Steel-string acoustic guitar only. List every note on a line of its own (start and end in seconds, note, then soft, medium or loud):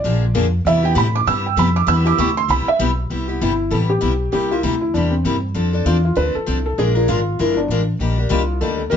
0.04 0.23 D3 medium
0.04 0.24 F3 medium
0.04 0.24 A#3 medium
0.04 0.24 D4 medium
0.04 0.24 G#4 medium
0.35 0.45 D3 medium
0.35 0.45 F3 medium
0.35 0.45 A#3 medium
0.35 0.46 D4 medium
0.35 0.46 G#4 medium
0.66 0.83 C3 medium
0.66 0.83 G3 medium
0.66 0.83 B3 medium
0.66 0.83 E4 medium
0.66 0.82 G4 medium
0.83 0.95 B3 soft
0.83 0.95 E4 medium
0.83 0.95 G4 medium
0.95 1.06 C3 medium
0.95 1.06 G3 loud
0.95 1.06 B3 loud
0.95 1.06 E4 loud
0.95 1.06 G4 loud
1.27 1.46 C3 medium
1.27 1.46 G3 medium
1.27 1.46 B3 medium
1.27 1.46 E4 medium
1.27 1.46 G4 medium
1.57 1.67 C3 medium
1.57 1.68 G3 medium
1.57 1.68 B3 medium
1.57 1.68 E4 medium
1.57 1.68 G4 loud
1.87 2.04 C3 medium
1.87 2.04 G3 medium
1.87 2.04 B3 medium
1.87 2.04 E4 medium
1.87 2.03 G4 medium
2.05 2.17 B3 soft
2.05 2.18 E4 medium
2.05 2.17 G4 medium
2.18 2.29 C3 medium
2.18 2.29 G3 loud
2.18 2.29 B3 loud
2.18 2.29 E4 loud
2.18 2.29 G4 loud
2.48 2.68 C3 medium
2.48 2.68 G3 medium
2.48 2.69 B3 medium
2.48 2.69 E4 medium
2.48 2.68 G4 medium
2.79 2.90 C3 medium
2.79 2.90 G3 loud
2.79 2.90 B3 medium
2.79 2.90 E4 loud
2.79 2.90 G4 loud
3.10 3.27 C3 medium
3.10 3.27 G3 medium
3.10 3.28 B3 medium
3.10 3.28 E4 medium
3.10 3.27 G4 medium
3.28 3.41 B3 soft
3.28 3.40 E4 soft
3.28 3.40 G4 soft
3.41 3.51 C3 medium
3.41 3.52 G3 medium
3.41 3.52 B3 medium
3.41 3.52 E4 medium
3.41 3.52 G4 medium
3.70 3.90 C3 medium
3.70 3.90 G3 medium
3.70 3.90 B3 medium
3.70 3.91 E4 medium
3.70 3.91 G4 medium
4.01 4.12 C3 medium
4.01 4.12 G3 medium
4.01 4.12 B3 medium
4.01 4.12 E4 medium
4.01 4.12 G4 medium
4.32 4.49 C3 medium
4.32 4.50 G3 medium
4.32 4.50 A#3 medium
4.32 4.50 E4 medium
4.32 4.50 G4 medium
4.51 4.63 A#3 soft
4.51 4.63 E4 soft
4.51 4.63 G4 medium
4.63 4.74 C3 medium
4.63 4.74 G3 medium
4.63 4.74 A#3 medium
4.63 4.74 E4 medium
4.63 4.74 G4 medium
4.95 5.13 C3 medium
4.95 5.14 G3 medium
4.95 5.14 A#3 medium
4.95 5.14 E4 medium
4.95 5.14 G4 medium
5.25 5.35 C3 medium
5.25 5.35 G3 medium
5.25 5.35 A#3 medium
5.25 5.36 E4 medium
5.25 5.36 G4 medium
5.54 5.72 F3 medium
5.54 5.72 C4 medium
5.54 5.72 D4 medium
5.54 5.72 A4 medium
5.73 5.85 C4 soft
5.73 5.85 D4 medium
5.73 5.85 A4 soft
5.86 5.96 F3 medium
5.86 5.96 C4 medium
5.86 5.96 D4 loud
5.86 5.97 A4 medium
6.15 6.35 F3 medium
6.15 6.36 C4 medium
6.15 6.36 D4 medium
6.15 6.36 A4 medium
6.46 6.57 F3 medium
6.46 6.57 C4 medium
6.46 6.58 D4 medium
6.46 6.58 A4 medium
6.78 6.95 F3 medium
6.78 6.96 G#3 medium
6.78 6.96 D4 medium
6.78 6.94 F4 medium
6.78 6.94 A#4 medium
6.95 7.07 D4 soft
6.95 7.08 F4 soft
6.95 7.07 A#4 medium
7.08 7.19 F3 medium
7.08 7.19 G#3 medium
7.08 7.19 D4 loud
7.08 7.19 F4 medium
7.08 7.20 A#4 loud
7.39 7.58 F3 medium
7.39 7.58 G#3 medium
7.39 7.59 D4 medium
7.39 7.59 F4 medium
7.39 7.59 A#4 medium
7.70 7.81 F3 medium
7.70 7.81 G#3 medium
7.70 7.81 D4 medium
7.70 7.81 F4 medium
7.70 7.81 A#4 medium
8.00 8.17 D#3 medium
8.00 8.18 G3 medium
8.00 8.18 A#3 medium
8.00 8.18 D4 medium
8.00 8.17 G4 medium
8.18 8.29 A#3 soft
8.18 8.29 D4 soft
8.18 8.30 G4 medium
8.29 8.41 D#3 medium
8.29 8.41 G3 medium
8.29 8.41 A#3 medium
8.29 8.41 D4 medium
8.29 8.41 G4 medium
8.61 8.81 D#3 medium
8.61 8.81 G3 medium
8.61 8.81 A#3 medium
8.61 8.81 D4 medium
8.61 8.81 G4 medium
8.91 8.97 D#3 medium
8.91 8.97 G3 medium
8.91 8.97 A#3 medium
8.91 8.97 D4 medium
8.91 8.97 G4 medium